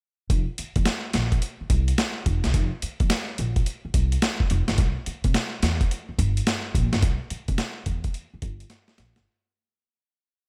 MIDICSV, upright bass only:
0, 0, Header, 1, 3, 480
1, 0, Start_track
1, 0, Tempo, 560748
1, 255, Time_signature, 4, 2, 24, 8
1, 8972, End_track
2, 0, Start_track
2, 0, Title_t, "Upright bass"
2, 0, Program_c, 0, 32
2, 257, Note_on_c, 0, 29, 83
2, 367, Note_off_c, 0, 29, 0
2, 651, Note_on_c, 0, 41, 84
2, 712, Note_off_c, 0, 41, 0
2, 984, Note_on_c, 0, 34, 81
2, 1153, Note_off_c, 0, 34, 0
2, 1457, Note_on_c, 0, 36, 94
2, 1629, Note_off_c, 0, 36, 0
2, 1937, Note_on_c, 0, 29, 100
2, 2047, Note_off_c, 0, 29, 0
2, 2097, Note_on_c, 0, 36, 85
2, 2156, Note_off_c, 0, 36, 0
2, 2177, Note_on_c, 0, 29, 98
2, 2287, Note_off_c, 0, 29, 0
2, 2572, Note_on_c, 0, 41, 80
2, 2633, Note_off_c, 0, 41, 0
2, 2901, Note_on_c, 0, 34, 85
2, 3071, Note_off_c, 0, 34, 0
2, 3375, Note_on_c, 0, 36, 87
2, 3547, Note_off_c, 0, 36, 0
2, 3860, Note_on_c, 0, 29, 88
2, 3969, Note_off_c, 0, 29, 0
2, 4015, Note_on_c, 0, 31, 83
2, 4075, Note_off_c, 0, 31, 0
2, 4095, Note_on_c, 0, 36, 98
2, 4206, Note_off_c, 0, 36, 0
2, 4493, Note_on_c, 0, 48, 87
2, 4553, Note_off_c, 0, 48, 0
2, 4817, Note_on_c, 0, 40, 79
2, 4989, Note_off_c, 0, 40, 0
2, 5298, Note_on_c, 0, 31, 93
2, 5469, Note_off_c, 0, 31, 0
2, 5776, Note_on_c, 0, 34, 92
2, 5887, Note_off_c, 0, 34, 0
2, 5933, Note_on_c, 0, 31, 87
2, 5993, Note_off_c, 0, 31, 0
2, 6017, Note_on_c, 0, 36, 93
2, 6127, Note_off_c, 0, 36, 0
2, 6410, Note_on_c, 0, 48, 79
2, 6471, Note_off_c, 0, 48, 0
2, 6733, Note_on_c, 0, 40, 85
2, 6906, Note_off_c, 0, 40, 0
2, 7212, Note_on_c, 0, 31, 84
2, 7385, Note_off_c, 0, 31, 0
2, 7699, Note_on_c, 0, 34, 90
2, 7809, Note_off_c, 0, 34, 0
2, 7852, Note_on_c, 0, 31, 89
2, 7913, Note_off_c, 0, 31, 0
2, 8972, End_track
3, 0, Start_track
3, 0, Title_t, "Muted upright bass strokes"
3, 503, Note_on_c, 9, 29, 49
3, 588, Note_off_c, 9, 29, 0
3, 1378, Note_on_c, 9, 29, 44
3, 1464, Note_off_c, 9, 29, 0
3, 2422, Note_on_c, 9, 29, 49
3, 2507, Note_off_c, 9, 29, 0
3, 3294, Note_on_c, 9, 29, 47
3, 3380, Note_off_c, 9, 29, 0
3, 4340, Note_on_c, 9, 29, 50
3, 4426, Note_off_c, 9, 29, 0
3, 5213, Note_on_c, 9, 29, 49
3, 5298, Note_off_c, 9, 29, 0
3, 6258, Note_on_c, 9, 29, 52
3, 6343, Note_off_c, 9, 29, 0
3, 7136, Note_on_c, 9, 29, 46
3, 7221, Note_off_c, 9, 29, 0
3, 8972, End_track
0, 0, End_of_file